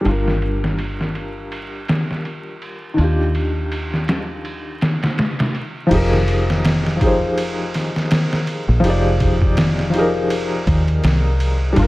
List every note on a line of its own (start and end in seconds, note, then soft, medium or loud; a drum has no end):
0.01 2.92 G3 medium
0.01 2.94 D4 medium
0.05 2.95 G1 medium
0.05 2.96 F4 medium
0.05 ride medium
0.11 2.97 A#4 medium
0.28 snare soft
0.42 ride medium
0.64 snare soft
0.79 ride medium
1.01 snare soft
1.15 ride medium
1.52 ride medium
1.88 snare medium
1.88 ride medium
2.11 snare soft
2.25 ride soft
2.62 ride medium
2.94 5.85 D#3 medium
2.94 5.87 D4 medium
2.98 5.88 D#2 medium
2.98 5.88 F4 medium
2.98 ride medium
3.04 5.90 G4 medium
3.35 ride medium
3.72 ride medium
3.93 snare soft
4.08 snare loud
4.08 ride medium
4.45 ride medium
4.81 snare medium
4.81 ride medium
5.03 snare medium
5.03 ride medium
5.18 snare medium
5.18 ride medium
5.39 snare medium
5.39 ride medium
5.55 ride medium
5.87 6.95 F3 medium
5.87 6.96 D#4 medium
5.91 7.95 F1 medium
5.91 6.97 G4 medium
5.91 6.98 G#4 medium
5.91 kick loud
5.91 crash medium
5.91 ride medium
5.96 7.00 A#4 loud
6.13 snare soft
6.28 ride medium
6.50 snare medium
6.65 snare loud
6.65 ride medium
6.87 snare soft
6.96 8.78 F3 medium
6.96 8.79 D#4 medium
7.01 8.80 G4 medium
7.01 8.82 G#4 medium
7.01 kick loud
7.01 ride medium
7.06 8.83 C5 medium
7.38 ride medium
7.74 snare soft
7.74 ride medium
7.95 8.64 C2 medium
7.95 snare soft
8.11 snare loud
8.11 ride medium
8.33 snare medium
8.47 ride medium
8.68 8.82 A#1 loud
8.80 10.69 F1 medium
8.80 9.88 F3 medium
8.80 9.89 D#4 medium
8.84 9.90 G4 medium
8.84 9.92 G#4 medium
8.84 ride medium
8.90 9.93 D5 loud
9.20 kick loud
9.20 ride medium
9.42 kick loud
9.57 snare loud
9.57 ride medium
9.79 snare soft
9.90 11.71 F3 medium
9.90 11.72 D#4 medium
9.90 ride medium
9.95 11.73 G4 medium
9.95 11.74 G#4 medium
9.99 11.76 A#4 loud
10.30 ride medium
10.67 11.00 D#2 medium
10.67 kick medium
10.67 ride medium
10.88 ride soft
11.04 11.74 C2 loud
11.04 snare loud
11.04 ride medium
11.40 ride medium
11.73 11.87 G3 medium
11.73 11.87 D4 medium
11.73 ride medium
11.77 11.87 G1 loud
11.77 11.87 F4 medium
11.77 kick loud
11.82 11.87 A#4 loud